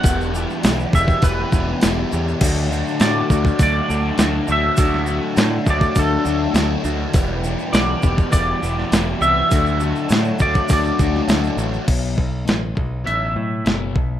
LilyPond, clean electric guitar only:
\new Staff \with { instrumentName = "Clean electric guitar" } { \time 4/4 \key d \major \tempo 4 = 101 fis''4. e''8 b'4 r4 | r4 d''4 d''4. e''8~ | e''4. d''8 a'4 r4 | r4 d''4 d''4. e''8~ |
e''4. d''8 d''4 r4 | r2 e''2 | }